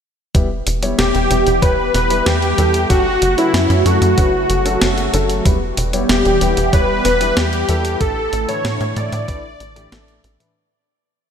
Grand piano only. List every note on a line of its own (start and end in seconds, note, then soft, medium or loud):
0.35 0.46 G3 medium
0.35 0.46 B3 medium
0.35 0.46 E4 medium
0.35 0.46 G4 medium
0.35 0.46 B4 medium
0.83 1.27 G3 medium
0.83 1.27 B3 medium
0.83 1.27 E4 medium
0.83 1.27 G4 medium
0.83 1.27 C#5 medium
1.30 1.58 G3 medium
1.30 1.59 B3 medium
1.30 1.58 E4 medium
1.30 1.59 G4 medium
1.30 1.58 B4 medium
1.62 1.74 G3 medium
1.62 1.74 B3 medium
1.62 1.74 E4 medium
1.62 1.74 G4 medium
1.62 1.74 C#5 medium
2.10 2.54 G3 medium
2.10 2.54 B3 medium
2.10 2.54 E4 medium
2.10 2.54 G4 medium
2.10 2.54 B4 loud
2.58 2.86 G3 medium
2.58 2.86 B3 medium
2.58 2.86 E4 medium
2.58 2.86 G4 medium
2.58 2.86 A4 medium
2.90 3.01 F#3 medium
2.90 3.01 A3 medium
2.90 3.01 C#4 medium
2.90 3.01 F#4 medium
2.90 3.01 A4 medium
3.38 3.82 F#3 medium
3.38 3.82 A3 medium
3.38 3.82 C#4 medium
3.38 3.82 F#4 medium
3.38 3.82 B4 medium
3.86 4.14 F#3 medium
3.86 4.14 A3 medium
3.86 4.14 C#4 medium
3.86 4.14 F#4 medium
3.86 4.14 A4 medium
4.18 4.29 F#3 medium
4.18 4.29 A3 medium
4.18 4.29 C#4 medium
4.18 4.29 F#4 medium
4.18 4.29 B4 loud
4.65 5.10 F#3 medium
4.65 5.10 A3 medium
4.65 5.10 C#4 medium
4.65 5.10 F#4 medium
4.65 5.10 A4 loud
5.13 5.42 F#3 medium
5.13 5.42 A3 medium
5.13 5.42 C#4 medium
5.13 5.42 F#4 medium
5.13 5.42 A4 loud
5.45 5.57 G3 medium
5.45 5.57 B3 medium
5.45 5.57 E4 medium
5.45 5.57 G4 medium
5.45 5.57 B4 medium
5.93 6.37 G3 medium
5.93 6.37 B3 medium
5.93 6.37 E4 medium
5.93 6.37 G4 medium
5.93 6.37 C#5 medium
6.41 6.69 G3 medium
6.41 6.69 B3 medium
6.41 6.69 E4 medium
6.41 6.69 G4 medium
6.41 6.69 B4 medium
6.73 6.84 G3 medium
6.73 6.84 B3 medium
6.73 6.84 E4 medium
6.73 6.84 G4 medium
6.73 6.84 C#5 loud
7.21 7.65 G3 medium
7.21 7.65 B3 medium
7.21 7.65 E4 medium
7.21 7.65 G4 medium
7.21 7.65 B4 loud
7.69 7.97 G3 medium
7.69 7.97 B3 medium
7.69 7.97 E4 medium
7.69 7.97 G4 medium
7.69 7.97 A4 loud
8.01 8.12 A2 medium
8.01 8.12 E3 medium
8.01 8.12 A3 medium
8.01 8.12 D4 medium
8.01 8.12 E4 medium
8.01 8.12 A4 medium
8.49 8.93 A2 medium
8.49 8.93 E3 medium
8.49 8.93 A3 medium
8.49 8.93 D4 medium
8.49 8.93 E4 medium
8.49 8.93 B4 medium
8.96 9.25 A2 medium
8.96 9.25 E3 medium
8.96 9.25 A3 medium
8.96 9.25 D4 medium
8.96 9.24 E4 medium
8.96 9.25 A4 medium
9.28 9.39 A2 medium
9.28 9.39 E3 medium
9.28 9.39 A3 medium
9.28 9.39 D4 medium
9.28 9.39 E4 medium
9.28 9.39 B4 loud
9.76 9.87 A2 medium
9.76 9.87 E3 medium
9.76 9.87 A3 medium
9.76 9.87 D4 medium
9.76 9.87 E4 medium
9.76 9.87 G4 medium
9.92 10.36 A2 medium
9.92 10.36 E3 medium
9.92 10.36 A3 medium
9.92 10.36 D4 medium
9.92 10.36 E4 medium
9.92 10.36 A4 medium
10.40 10.51 A2 medium
10.40 10.51 E3 medium
10.40 10.51 A3 medium
10.40 10.51 D4 medium
10.40 10.51 E4 medium
10.40 10.51 B4 medium